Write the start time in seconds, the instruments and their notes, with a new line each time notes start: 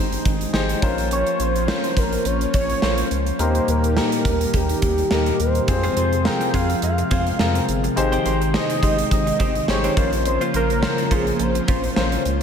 Already playing: analog synth bass G#1, string machine D#3 G#3 D#4 G5, grand piano D#4 G4 G#4 C5
0.12 closed hi-hat
0.25 analog synth bass G#1, kick, closed hi-hat
0.41 closed hi-hat
0.53 analog synth bass G#1, grand piano D#4 G4 G#4 C5, snare
0.69 closed hi-hat
0.82 analog synth bass A#1, string machine F3 A#3 C#4 F4, grand piano C#4 F4 A#4 C5, kick, closed hi-hat
0.98 closed hi-hat
1.11 analog synth lead C#5, closed hi-hat
1.27 closed hi-hat
1.39 analog synth bass A#1, analog synth lead C5, closed hi-hat
1.56 closed hi-hat
1.68 grand piano C#4 F4 A#4 C5, snare
1.84 closed hi-hat
1.97 analog synth bass A#1, analog synth lead A#4, kick, closed hi-hat
2.13 closed hi-hat
2.25 analog synth bass A#1, analog synth lead C#5, closed hi-hat
2.41 closed hi-hat
2.54 analog synth bass A#1, analog synth lead C#5, kick, closed hi-hat
2.70 closed hi-hat
2.82 analog synth bass A#1, grand piano C#4 F4 A#4 C5, snare
2.98 closed hi-hat
3.11 analog synth bass C#2, closed hi-hat
3.27 closed hi-hat
3.39 analog synth bass D#2, string machine A#2 D#3 G3 D#4 G4, grand piano A#3 D#4 G4 A#4, analog synth lead C5, closed hi-hat
3.55 closed hi-hat
3.68 analog synth bass D#2, analog synth lead A#4, closed hi-hat
3.84 closed hi-hat
3.96 grand piano A#3 D#4 G4 A#4, analog synth lead A#4, snare
4.12 closed hi-hat
4.25 analog synth bass D#2, kick, closed hi-hat
4.41 closed hi-hat
4.54 analog synth bass D#2, analog synth lead G4, kick, closed hi-hat
4.69 closed hi-hat
4.82 analog synth bass D#2, kick, closed hi-hat
4.98 closed hi-hat
5.10 analog synth bass D#2, grand piano A#3 D#4 G4 A#4, snare
5.26 closed hi-hat
5.39 analog synth bass D#2, analog synth lead C5, closed hi-hat
5.55 closed hi-hat
5.68 analog synth bass F2, string machine C3 F3 G#3 F4 G#4, grand piano C4 F4 G#4 C5, muted clean electric guitar stroke, kick, closed hi-hat
5.83 clean electric guitar C4 F4 G#4 C5, closed hi-hat
5.96 analog synth bass F2, clean electric guitar C4 F4 G#4 C5, closed hi-hat
6.12 muted clean electric guitar stroke, closed hi-hat
6.25 grand piano C4 F4 G#4 A#4, analog synth lead G5, muted clean electric guitar stroke, snare
6.41 muted clean electric guitar stroke, closed hi-hat
6.54 analog synth bass F2, clean electric guitar C4 F4 G#4 C5, analog synth lead F5, kick, closed hi-hat
6.70 muted clean electric guitar stroke, closed hi-hat
6.82 analog synth bass F2, analog synth lead F5, muted clean electric guitar stroke, closed hi-hat
6.98 muted clean electric guitar stroke, closed hi-hat
7.11 analog synth bass F2, clean electric guitar C4 F4 G#4 C5, kick, closed hi-hat
7.26 muted clean electric guitar stroke, closed hi-hat
7.39 analog synth bass F2, grand piano C4 F4 G#4 A#4, muted clean electric guitar stroke, snare
7.55 muted clean electric guitar stroke, closed hi-hat
7.68 analog synth bass G1, closed hi-hat
7.84 muted clean electric guitar stroke, closed hi-hat
7.96 analog synth bass G#1, string machine D#3 G#3 D#4 G5, grand piano D#4 G4 G#4 C5, muted clean electric guitar stroke, closed hi-hat
8.12 clean electric guitar C4 D#4 G4 C5, closed hi-hat
8.25 analog synth bass G#1, clean electric guitar C4 D#4 G4 C5, closed hi-hat
8.41 muted clean electric guitar stroke, closed hi-hat
8.54 grand piano D#4 G4 G#4 C5, analog synth lead D#5, muted clean electric guitar stroke, snare
8.70 muted clean electric guitar stroke, closed hi-hat
8.83 analog synth bass G#1, clean electric guitar C4 D#4 G4 C5, kick, closed hi-hat
8.98 muted clean electric guitar stroke, closed hi-hat
9.11 analog synth bass G#1, analog synth lead D#5, muted clean electric guitar stroke, kick, closed hi-hat
9.27 muted clean electric guitar stroke, closed hi-hat
9.39 analog synth bass G#1, clean electric guitar C4 D#4 G4 C5, kick, closed hi-hat
9.55 muted clean electric guitar stroke, closed hi-hat
9.68 analog synth bass G#1, grand piano D#4 G4 G#4 C5, analog synth lead C#5, muted clean electric guitar stroke, snare
9.84 clean electric guitar C4 D#4 G4 C5, closed hi-hat
9.96 analog synth bass A#1, string machine C#3 F3 A#3 F4 C5, clean electric guitar A#3 C#4 F4 C5, grand piano C#4 F4 A#4 C5, kick, closed hi-hat
10.13 muted clean electric guitar stroke, closed hi-hat
10.25 analog synth lead C5, muted clean electric guitar stroke, closed hi-hat
10.41 clean electric guitar A#3 C#4 F4 C5, closed hi-hat
10.54 analog synth bass A#1, clean electric guitar A#3 C#4 F4 C5, analog synth lead A#4, closed hi-hat
10.69 muted clean electric guitar stroke, closed hi-hat
10.82 grand piano C#4 F4 A#4 C5, muted clean electric guitar stroke, snare
10.98 muted clean electric guitar stroke, closed hi-hat
11.11 analog synth bass A#1, clean electric guitar A#3 C#4 F4 C5, analog synth lead G#4, kick, closed hi-hat
11.27 muted clean electric guitar stroke, closed hi-hat
11.39 analog synth bass A#1, analog synth lead C5, muted clean electric guitar stroke, closed hi-hat
11.55 muted clean electric guitar stroke, closed hi-hat
11.68 analog synth bass A#1, clean electric guitar A#3 C#4 F4 C5, analog synth lead C5, kick, closed hi-hat
11.84 muted clean electric guitar stroke, closed hi-hat
11.96 analog synth bass A#1, grand piano C#4 F4 A#4 C5, muted clean electric guitar stroke, snare
12.12 muted clean electric guitar stroke, closed hi-hat
12.25 analog synth bass C#2, closed hi-hat